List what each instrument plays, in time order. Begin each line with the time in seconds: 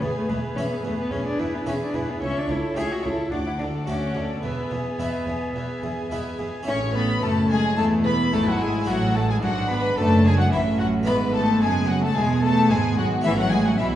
0.01 double bass section E1, cello section E2, harpsichord E2, cello B3, viola section G#4, violin section B4 G#5
0.16 cello A3
0.28 double bass section E1, cello section E2, harpsichord E2, cello G#3, violin section G#4 E5, viola section B4
0.56 double bass section E1, cello section E2, harpsichord E2 B3 E4, cello C#4, viola section G#4, violin section B4 G#5
0.71 cello B3
0.83 double bass section E1, cello section E2, harpsichord E2, cello A3, violin section G#4 E5, viola section B4
0.98 cello B3
1.11 double bass section E1, cello section E2, harpsichord E2, cello C#4, viola section G#4, violin section B4 G#5
1.26 cello D4
1.39 double bass section E1, cello section E2, harpsichord E2, cello E4, violin section G#4 E5, viola section B4
1.54 cello B3
1.65 double bass section E1, harpsichord E2 B3 E4, cello section E2, cello C#4, viola section G#4, violin section B4 G#5
1.82 cello D4
1.93 double bass section E1, harpsichord E2, cello section E2, cello E4, violin section G#4 E5, viola section B4
2.10 cello B3
2.22 double bass section C#2, harpsichord C#2, cello section C#2, cello C#4, viola section C#5, violin section E5 C#6
2.38 cello D4
2.49 double bass section C#2, harpsichord C#2, cello section C#2, cello E4, viola section A4, violin section C#5 A5
2.76 harpsichord C#2 A3 C#4 E4, double bass section C#2, cello section C#2, cello G#4, viola section C#5, violin section E5 C#6
2.92 cello F#4
3.03 double bass section C#2, harpsichord C#2, cello section C#2, cello E4, viola section A4, violin section C#5 A5
3.31 double bass section D2, cello section D2, harpsichord D2, cello D4, viola section F#4, violin section F#5 D6
3.46 cello E4
3.58 double bass section D2, cello section D2, harpsichord D2, cello D4, viola section A4, violin section D5 A5
3.85 double bass section D2, cello section D2, harpsichord D2 A3 F#4, cello C#4, viola section F#4, violin section F#5 D6
4.14 double bass section D2, harpsichord D2, cello section D2, viola section A4, violin section D5 A5
4.42 double bass section E1, cello section E2, harpsichord E2, cello B3, viola section B4, violin section E5 G#5
4.70 double bass section E1, cello section E2, harpsichord E2, viola section G#4, violin section E5 G#5
4.99 double bass section E1, cello section E2, harpsichord E2 G#3 B3 E4, viola section B4, violin section E5 G#5
5.27 double bass section E1, cello section E2, harpsichord E2, viola section G#4, violin section E5 G#5
5.54 double bass section E1, cello section E2, harpsichord E2, viola section B4, violin section E5 G#5
5.83 double bass section E1, cello section E2, harpsichord E2, viola section G#4, violin section E5 G#5
6.11 double bass section E1, cello section E2, harpsichord E2 G#3 B3 E4, viola section B4, violin section E5 G#5
6.39 double bass section E1, cello section E2, harpsichord E2, viola section G#4, violin section E5 G#5
6.63 harpsichord C#4 E4, viola section C#4
6.67 double bass section A1, cello section A2, harpsichord A2, cello C#4, violin section C#5 C#6
6.94 cello B3, violin section B4 B5
7.22 double bass section F#1, harpsichord F#2, cello section F#2, cello A3, violin section A4 A5
7.49 cello G#3, violin section G#4 G#5
7.76 double bass section E1, cello section E2, harpsichord E2, cello A3, viola section E4, violin section A4 A5
8.05 cello B3, violin section B4 B5
8.33 double bass section G#1, cello section G#2, harpsichord G#2, cello A3, violin section A4 A5
8.46 cello F#3, violin section F#4 F#5
8.59 cello G#3, violin section G#4 G#5
8.84 double bass section A1, cello section A2, cello F#3, harpsichord B3 D4 F#4, violin section F#4
8.88 harpsichord A2, violin section F#5
9.14 cello A3, violin section A4 A5
9.29 cello G#3, violin section G#4 G#5
9.42 double bass section G#1, cello section G#2, harpsichord G#2, cello F#3, viola section D4, violin section F#4 F#5
9.70 cello B3, violin section B4 B5
9.97 double bass section F#1, cello section F#2, harpsichord F#2, cello A3, viola section D4, violin section A4 A5
10.24 cello G#3, violin section G#4 G#5
10.37 cello F#3, violin section F#4 F#5
10.51 double bass section A1, cello section A2, harpsichord A2, cello E3, viola section C#4, violin section E4 E5
10.79 cello F#3, violin section F#4 F#5
11.03 harpsichord B3 D4 E4, violin section B4 B5
11.07 double bass section G#1, cello section G#2, harpsichord G#2, cello B3, viola section B3
11.33 cello A3, violin section A4 A5
11.61 double bass section F#1, cello section F#2, harpsichord F#2, cello G#3, violin section G#4 G#5
11.88 cello F#3, violin section F#4 F#5
12.02 cello A3, violin section A4 A5
12.15 double bass section E1, cello section E2, harpsichord E2, cello G#3, viola section B3, violin section G#4 G#5
12.42 cello A3, violin section A4 A5
12.70 double bass section G#1, harpsichord G#2, cello section G#2, cello G#3, violin section G#4 G#5
12.98 cello F#3, violin section F#4 F#5
13.21 cello E3, harpsichord A3 C#4 E4, violin section E5
13.26 double bass section A1, cello section A2, harpsichord A2, viola section C#4, violin section E4
13.38 cello F#3, violin section F#4 F#5
13.51 cello G#3, violin section G#4 G#5
13.66 cello F#3, violin section F#4 F#5
13.78 double bass section B1, harpsichord B2, cello section B2, cello E3, violin section E4 E5, viola section E4